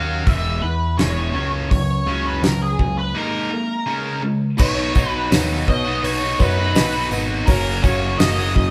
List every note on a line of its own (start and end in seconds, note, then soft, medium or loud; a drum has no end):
0.00 0.24 D#2 medium
0.00 0.24 F#3 medium
0.00 0.24 C#4 medium
0.00 0.24 F#4 loud
0.00 0.27 F5 medium
0.25 0.60 E1 medium
0.25 0.60 E2 medium
0.25 0.60 E3 medium
0.25 0.60 G#3 medium
0.25 0.64 E5 medium
0.25 kick loud
0.25 open hi-hat soft
0.61 0.95 E2 medium
0.61 0.95 E3 medium
0.61 0.96 B4 medium
0.97 1.31 E1 medium
0.97 1.32 E2 medium
0.97 1.32 E3 medium
0.97 1.33 G#3 medium
0.97 1.48 C#5 medium
0.97 snare loud
0.97 open hi-hat soft
1.33 1.68 C#2 medium
1.33 1.68 C#3 medium
1.33 1.68 F#3 medium
1.33 1.69 C#4 medium
1.70 2.04 C#2 medium
1.70 2.03 C#3 medium
1.70 2.04 F#3 medium
1.70 2.26 C#5 medium
1.70 kick loud
1.70 open hi-hat soft
2.06 2.40 C#2 medium
2.06 2.41 C#3 medium
2.06 2.41 F#3 medium
2.06 2.41 C#4 medium
2.27 2.43 B4 medium
2.42 2.76 C#2 medium
2.42 2.75 C#3 medium
2.42 2.76 F#3 medium
2.42 2.62 A#4 medium
2.42 snare loud
2.42 open hi-hat medium
2.62 2.98 G#4 medium
2.79 3.12 C#2 medium
2.79 3.12 C#3 medium
2.79 3.12 F#3 medium
2.79 kick medium
2.98 3.14 B4 medium
3.15 3.49 G#3 medium
3.15 3.49 A#3 medium
3.15 3.50 D#4 medium
3.15 4.21 A#4 medium
3.50 3.83 G#3 medium
3.50 3.84 A#3 medium
3.86 4.21 C#3 medium
3.86 4.21 G#3 medium
3.86 4.21 C#4 medium
4.23 4.55 C#3 medium
4.23 4.56 G#3 medium
4.57 4.91 B1 medium
4.57 5.29 B2 medium
4.57 4.94 F#3 medium
4.57 4.94 B3 loud
4.57 4.88 D#4 medium
4.57 4.95 D#4 loud
4.57 4.97 F#4 loud
4.57 4.88 B4 medium
4.57 5.10 C#5 loud
4.57 4.88 C#5 loud
4.57 kick loud
4.57 crash loud
4.57 tambourine medium
4.94 5.27 B1 medium
4.94 5.30 F#3 medium
4.94 5.30 B3 medium
4.94 5.31 D#4 medium
4.94 5.25 D#4 medium
4.94 5.32 F#4 medium
4.94 5.25 B4 medium
4.94 5.25 C#5 medium
4.94 kick medium
4.94 tambourine medium
5.10 5.27 B4 loud
5.30 5.63 D#2 medium
5.30 5.85 B2 medium
5.30 5.66 F#3 medium
5.30 5.50 B3 medium
5.30 5.60 D#4 medium
5.30 5.48 D#4 medium
5.30 5.47 F#4 medium
5.30 5.60 B4 medium
5.30 5.60 C#5 medium
5.30 snare loud
5.30 open hi-hat medium
5.30 tambourine loud
5.48 5.66 B3 medium
5.48 5.67 D#4 medium
5.48 5.67 F#4 medium
5.67 6.00 B1 medium
5.67 5.96 D#4 medium
5.67 5.97 B4 medium
5.67 5.97 C#5 medium
5.67 6.04 D#5 loud
5.67 muted overdriven electric guitar stroke soft
5.67 kick medium
5.67 tambourine soft
5.85 6.23 B3 medium
5.85 6.21 D#4 medium
5.85 6.20 F#4 medium
6.02 6.34 B1 medium
6.02 6.32 D#4 medium
6.02 6.32 B4 medium
6.02 6.32 C#5 medium
6.02 6.41 C#5 medium
6.02 open hi-hat medium
6.21 6.39 B3 medium
6.21 6.40 D#4 medium
6.21 6.41 F#4 medium
6.39 6.71 F#2 medium
6.39 6.75 F#3 medium
6.39 6.59 B3 medium
6.39 6.68 D#4 medium
6.39 6.58 D#4 medium
6.39 6.56 F#4 medium
6.39 6.68 B4 medium
6.39 7.08 B4 medium
6.39 6.68 C#5 loud
6.39 kick medium
6.39 tambourine medium
6.58 6.75 B3 medium
6.58 6.76 D#4 medium
6.58 6.77 F#4 medium
6.75 7.07 B1 medium
6.75 7.29 B2 medium
6.75 7.10 F#3 medium
6.75 6.95 B3 loud
6.75 7.04 D#4 loud
6.75 6.94 D#4 loud
6.75 6.92 F#4 loud
6.75 7.04 B4 medium
6.75 7.04 D#5 loud
6.75 snare loud
6.75 open hi-hat medium
6.75 tambourine medium
6.93 7.11 B3 medium
6.93 7.12 D#4 medium
6.93 7.12 F#4 medium
7.10 7.43 G#1 medium
7.10 7.45 F#3 medium
7.10 7.46 B3 medium
7.10 7.40 D#4 medium
7.10 7.46 D#4 medium
7.10 7.47 F#4 medium
7.10 7.40 B4 medium
7.10 7.40 D#5 medium
7.10 tambourine medium
7.46 7.79 F#1 medium
7.46 8.18 F#2 medium
7.46 8.18 C#3 medium
7.46 7.82 F#3 loud
7.46 7.83 A#3 loud
7.46 7.84 C#4 loud
7.46 7.77 F#4 medium
7.46 7.84 F#4 loud
7.46 7.84 A#4 medium
7.46 7.77 A#4 medium
7.46 7.77 C#5 loud
7.46 kick loud
7.46 open hi-hat medium
7.46 tambourine medium
7.82 8.15 F#1 medium
7.82 8.19 F#3 medium
7.82 8.20 A#3 medium
7.82 8.20 C#4 medium
7.82 8.12 F#4 medium
7.82 8.21 F#4 medium
7.82 8.12 A#4 medium
7.82 8.18 C#5 medium
7.82 8.12 C#5 medium
7.82 kick medium
7.82 tambourine medium
8.18 8.71 F#1 medium
8.18 8.71 F#2 medium
8.18 8.71 C#3 medium
8.18 8.39 F#3 medium
8.18 8.38 A#3 medium
8.18 8.37 C#4 medium
8.18 8.48 F#4 medium
8.18 8.36 F#4 loud
8.18 8.48 A#4 medium
8.18 8.71 D#5 loud
8.18 8.48 D#5 medium
8.18 snare loud
8.18 open hi-hat medium
8.18 tambourine medium
8.37 8.54 F#3 medium
8.37 8.54 A#3 medium
8.37 8.55 C#4 medium
8.37 8.55 F#4 medium
8.55 8.71 F#4 medium
8.55 8.71 A#4 medium
8.55 8.71 D#5 medium
8.55 muted overdriven electric guitar stroke soft
8.55 kick medium